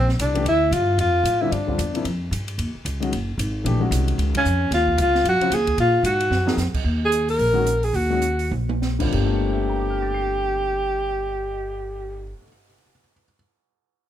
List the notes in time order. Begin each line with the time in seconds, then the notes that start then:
Already playing: A#1
0.09 snare
0.19 C2 D4, hi-hat pedal, ride
0.34 E3 A3 D4 G4, ride
0.44 D2 E4, ride
0.71 G2 F4, hi-hat pedal, ride
0.98 F2 F4, ride
1.23 A2, hi-hat pedal, ride
1.41 D3 G3 C4 E4 F4
1.51 G2 D4, ride
1.67 D3 G3 C4 F4, kick
1.78 E2, hi-hat pedal, ride
1.93 C3 F3 A#3 E4, ride
2.04 F2, ride
2.31 G2, hi-hat pedal, ride
2.48 ride
2.58 D#2, ride
2.75 muted upright bass stroke
2.85 C#2, hi-hat pedal, ride
3.00 D#3 G#3 C#4 F#4, ride
3.12 F#1, ride
3.38 G#1, hi-hat pedal, ride
3.64 A#1 E3 A3 D4 G4, ride
3.80 D#3 G#3 C#4 F#4
3.91 C2, hi-hat pedal, ride
4.08 ride
4.18 C#2, ride
4.35 C#4, kick, ride
4.45 F2, hi-hat pedal
4.71 D#2 F4, snare, ride
4.88 kick
4.98 C#2 F4, hi-hat pedal, ride
5.15 snare
5.24 F#2, ride
5.29 F#4
5.40 C#3 F#3 C4 F4, muted upright bass stroke, ride
5.50 D#2 G#4, hi-hat pedal, ride
5.67 kick, ride
5.77 A#2 F4, ride
6.03 G#2 F#4, hi-hat pedal, ride
6.20 ride
6.30 F#2, snare
6.45 F3 A#3 D#4 G#4, snare
6.57 F2, snare, hi-hat pedal
6.74 muted upright bass stroke, kick, crash
6.84 D#2
7.05 G#4
7.12 closed hi-hat
7.28 A#4, open hi-hat
7.39 A#1, open hi-hat
7.53 D#3 G#3 C#4 F#4
7.67 closed hi-hat
7.83 G#4, open hi-hat
7.93 D#2 F#4, open hi-hat
8.10 D#3 G#3 C#4 F#4
8.22 closed hi-hat
8.39 open hi-hat
8.51 A#1, high tom
8.69 high tom
8.82 snare
8.99 G2 D3 G3 C4 F4, kick, crash
9.05 D3
9.10 G1 A#3 G4, kick, crash
9.14 C4
9.20 F4
9.25 A3
9.31 cymbal swell
9.45 C5
9.53 E5
9.60 G5
9.69 A#5
9.80 D6
9.90 F6
10.02 A6
10.14 C7